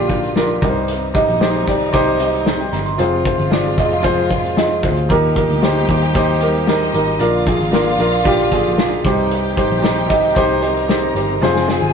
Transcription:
Already playing: A#1 D3 F3 A#3 D4 F4 G4 A#4
0.09 D4 F4 G4, kick, closed hi-hat
0.23 closed hi-hat
0.35 D4 F4 A#4, snare
0.61 C2 G2 C3 D#3 G3 D#4 G4 A#4, kick, closed hi-hat
0.69 C5
0.75 closed hi-hat
0.88 closed hi-hat
1.14 D#4 G4 D#5, kick, closed hi-hat
1.28 A#1, closed hi-hat
1.40 D#4 G4 C5, snare
1.54 closed hi-hat
1.66 C2 D#4 G4 D5, kick, closed hi-hat
1.81 closed hi-hat
1.93 C2 D#4 G4 C5, kick, closed hi-hat
2.19 D#4 G4 D#5, closed hi-hat
2.34 closed hi-hat
2.46 snare
2.60 G5, closed hi-hat
2.73 G1 A#5, snare, closed hi-hat
2.86 C6, closed hi-hat
2.98 F1 C3 F3 G#3 F4 G#4 C5, closed hi-hat
3.25 F4 G#4 C5, kick, closed hi-hat
3.38 G1, closed hi-hat
3.51 F4 G#4 D5, snare
3.64 closed hi-hat
3.77 F1 F4 G#4 D#5, kick, closed hi-hat
3.91 closed hi-hat
4.03 F1 F4 G#4 C5, kick, closed hi-hat
4.29 F4 G#4 C5, kick, closed hi-hat
4.44 closed hi-hat
4.56 F4 G#4 D#5, snare
4.83 D2 F4 G#4 C5, kick, snare, open hi-hat
4.97 closed hi-hat
5.09 D#2 A#2 G3 A#3 D#4 G4 A#4 G5, kick, closed hi-hat
5.36 D#4 G4 A#4, kick, closed hi-hat
5.49 D2, closed hi-hat
5.62 D#4 G4 C5, snare
5.75 closed hi-hat
5.88 D#2 D#4 G4 C5, kick, closed hi-hat
6.02 closed hi-hat
6.15 D#2 D#4 G4 C5, kick, closed hi-hat
6.41 D#4 G4 A#4, closed hi-hat
6.55 closed hi-hat
6.67 D#4 G4 A#4 D#5, snare
6.93 G#1 D#4 G4 A#4, closed hi-hat
7.07 closed hi-hat
7.19 A#1 D3 F3 A#3 D4 F4 A#4 F5, closed hi-hat
7.46 D4 F4 G#4, kick, closed hi-hat
7.59 G#1, closed hi-hat
7.71 D4 F4 A#4, snare
7.98 A#1 D4 F4 A#4, closed hi-hat
8.12 closed hi-hat
8.24 A#1 D4 F4 G4, kick, closed hi-hat
8.39 closed hi-hat
8.51 D4 F4 G#4, kick, closed hi-hat
8.66 closed hi-hat
8.77 D4 F4 G#4, snare
8.92 closed hi-hat
9.04 C2 G2 C3 D#3 G3 D4 D#4 G4 C5 G5, kick, snare, closed hi-hat
9.10 D#4
9.18 closed hi-hat
9.31 closed hi-hat
9.56 D#4 G4 C5, kick, closed hi-hat
9.71 A#1, closed hi-hat
9.82 D#4 G4 C5, snare
10.08 C2 D#4 G4 D#5, kick, closed hi-hat
10.23 closed hi-hat
10.35 C2 D#4 G4 C5, kick, closed hi-hat
10.50 closed hi-hat
10.61 D#4 G4 A#4 C5 A#5, closed hi-hat
10.77 closed hi-hat
10.88 D#4 G4 C5, snare
11.15 G1 D#4 G4 C5, closed hi-hat
11.29 closed hi-hat
11.41 F1 C3 F3 G#3 F4 G#4 C5 G#5, snare
11.56 snare
11.67 F4 G#4 C5, snare
11.82 G1

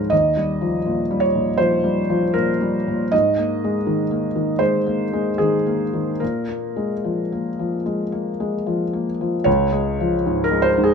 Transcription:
Already playing: G#2 F3 G#3 A#4 C5 C#5
0.10 D#2 D#5
0.37 G3
0.61 F3
0.86 A#2
1.11 G3
1.20 C#5
1.35 A#2
1.58 F3 C5
1.84 G3
2.10 F3
2.34 A#2 A#4
2.61 G3
2.88 A#2
3.12 G#2 D#5
3.38 A#3
3.64 G#3
3.87 D#3
4.11 A#3
4.36 D#3
4.59 G#3 C5
4.86 A#3
5.13 G#3
5.38 D#3 G#4
5.67 A#3
5.93 D#3
6.20 A#2 A#4
6.49 A#3
6.76 G#3
7.05 F3
7.32 A#3
7.59 F3
7.86 G#3
8.12 A#3
8.40 G#3
8.67 F3
8.93 A#3
9.21 F3
9.44 C#2 C#5
9.72 G#3
10.00 F3
10.26 G#2
10.44 A#4
10.51 G#3
10.62 C5
10.78 G#2
10.84 G#4

